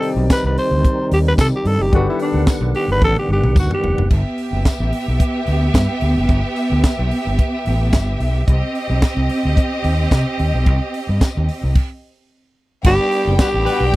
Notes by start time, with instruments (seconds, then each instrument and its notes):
Already playing: grand piano C3 C4 D#4 G4 D5, tonewheel organ D#3 G3 C4 D#4
0.03 open hi-hat
0.16 fingered electric bass B1
0.30 tenor saxophone B4, kick, snare, closed hi-hat, tambourine
0.44 fingered electric bass C2
0.58 tenor saxophone C5, open hi-hat
0.71 fingered electric bass D2
0.85 kick, closed hi-hat
1.12 fingered electric bass D#2, tenor saxophone G4, open hi-hat
1.28 tenor saxophone B4
1.38 fingered electric bass C3, tenor saxophone A4, kick, snare, closed hi-hat, tambourine
1.56 tenor saxophone G4
1.65 fingered electric bass G2, tenor saxophone A4, open hi-hat
1.79 fingered electric bass F#1, tenor saxophone G4
1.92 fingered electric bass G1, grand piano G3 D4 G4 A4 B4, tonewheel organ B3 F#5, tenor saxophone F#4, kick, closed hi-hat
2.09 tenor saxophone E4
2.20 tenor saxophone D4, open hi-hat
2.34 fingered electric bass D2
2.47 kick, snare, closed hi-hat, tambourine
2.61 fingered electric bass B1
2.75 tenor saxophone G4, open hi-hat
2.88 fingered electric bass G1, tenor saxophone B4
3.02 fingered electric bass A1, tenor saxophone A4, kick, high tom
3.16 tenor saxophone G4, high tom
3.28 fingered electric bass G1
3.33 tenor saxophone G4
3.44 fingered electric bass B1, mid tom
3.56 fingered electric bass D2, tenor saxophone F#4, kick, mid tom, tambourine
3.71 tenor saxophone G4, mid tom
3.83 fingered electric bass F1, floor tom
3.98 fingered electric bass F#1, floor tom
4.10 fingered electric bass G1, string section B3 G4 E5, kick, crash
4.38 open hi-hat
4.53 fingered electric bass F#1
4.65 kick, snare, closed hi-hat, tambourine
4.80 fingered electric bass A1
4.93 open hi-hat
5.08 fingered electric bass B1
5.20 kick, closed hi-hat
5.47 fingered electric bass D2, open hi-hat
5.74 fingered electric bass G2, kick, snare, closed hi-hat, tambourine
6.01 fingered electric bass D2, open hi-hat
6.17 fingered electric bass F#1
6.29 fingered electric bass G1, kick, closed hi-hat
6.56 open hi-hat
6.72 fingered electric bass D2
6.84 kick, snare, closed hi-hat, tambourine
6.99 fingered electric bass B1
7.11 open hi-hat
7.27 fingered electric bass G1
7.39 kick, closed hi-hat
7.66 fingered electric bass A1, open hi-hat
7.93 fingered electric bass G1, kick, snare, closed hi-hat, tambourine
8.20 fingered electric bass B1, open hi-hat
8.48 fingered electric bass C2, string section C4 G4 D#5, kick, closed hi-hat
8.75 open hi-hat
8.90 fingered electric bass B1
9.02 kick, snare, closed hi-hat, tambourine
9.17 fingered electric bass C2
9.29 open hi-hat
9.45 fingered electric bass D2
9.57 kick, closed hi-hat
9.84 fingered electric bass D#2, open hi-hat
10.11 fingered electric bass C3, kick, snare, closed hi-hat, tambourine
10.39 fingered electric bass D#2, open hi-hat
10.54 fingered electric bass B1
10.66 fingered electric bass C2, kick, closed hi-hat
10.94 open hi-hat
11.09 fingered electric bass G2
11.21 kick, snare, closed hi-hat, tambourine
11.37 fingered electric bass D#2
11.49 open hi-hat
11.63 fingered electric bass C2
11.75 kick, crash
12.84 fingered electric bass G1, string section G3 G5, tonewheel organ G3 B3 D4, tenor saxophone G4, kick, crash
13.12 open hi-hat
13.27 fingered electric bass F#1
13.39 horn section G3 F#4 B4, tenor saxophone G4, kick, snare, closed hi-hat, tambourine
13.54 fingered electric bass A1
13.66 horn section G3 F#4 B4, open hi-hat
13.80 fingered electric bass B1